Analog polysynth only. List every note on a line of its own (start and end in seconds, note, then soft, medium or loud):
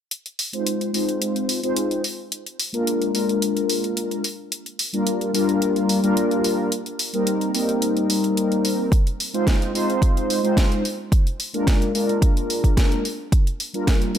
0.53 0.90 G#3 medium
0.53 0.91 C4 medium
0.53 0.91 D#4 medium
0.53 0.91 F4 medium
0.53 0.91 C5 medium
0.93 1.59 G#3 medium
0.93 1.60 C4 medium
0.93 1.60 D#4 medium
0.93 1.60 F4 medium
0.93 1.60 C5 medium
1.63 2.02 G#3 medium
1.63 2.02 C4 medium
1.63 2.02 D#4 medium
1.63 2.03 F4 medium
1.63 2.03 C5 medium
2.73 3.11 G#3 medium
2.73 3.11 A#3 medium
2.73 3.11 D4 medium
2.73 3.11 F4 medium
2.73 3.11 A#4 medium
3.13 4.22 G#3 medium
3.13 4.22 A#3 medium
3.13 4.23 D4 medium
3.13 4.23 F4 medium
3.13 4.23 A#4 medium
4.93 5.31 G3 medium
4.93 5.31 A#3 medium
4.93 5.31 D4 medium
4.93 5.31 F4 medium
4.93 5.31 A#4 medium
5.33 6.00 G3 medium
5.33 6.00 A#3 medium
5.33 6.00 D4 medium
5.33 6.00 F4 medium
5.33 6.01 A#4 medium
6.03 6.70 G3 medium
6.03 6.70 A#3 medium
6.03 6.70 D4 medium
6.03 6.71 F4 medium
6.03 6.71 A#4 loud
7.13 7.51 G3 medium
7.13 7.51 A#3 medium
7.13 7.51 C4 medium
7.13 7.51 D#4 medium
7.13 7.52 A#4 medium
7.53 8.90 G3 medium
7.53 8.90 A#3 medium
7.53 8.90 C4 medium
7.53 8.91 D#4 medium
7.53 8.91 A#4 medium
9.33 9.71 G#3 medium
9.33 9.71 C4 medium
9.33 9.72 D#4 medium
9.33 9.72 F4 medium
9.33 9.72 C5 medium
9.73 10.40 G#3 medium
9.73 10.40 C4 medium
9.73 10.40 D#4 medium
9.73 10.41 F4 medium
9.73 10.41 C5 medium
10.43 10.83 G#3 medium
10.43 10.83 C4 medium
10.43 10.83 D#4 medium
10.43 10.83 F4 medium
10.43 10.83 C5 medium
11.53 11.91 G#3 medium
11.53 11.91 A#3 medium
11.53 11.91 D4 medium
11.53 11.92 F4 medium
11.53 11.92 A#4 medium
11.94 13.03 G#3 medium
11.94 13.03 A#3 medium
11.94 13.03 D4 medium
11.94 13.03 F4 medium
11.94 13.04 A#4 medium
13.73 14.11 G3 medium
13.73 14.12 A#3 medium
13.73 14.12 D4 medium
13.73 14.12 F4 medium
13.73 14.12 A#4 medium
14.14 14.18 G3 medium
14.14 14.18 A#3 medium
14.14 14.18 D4 medium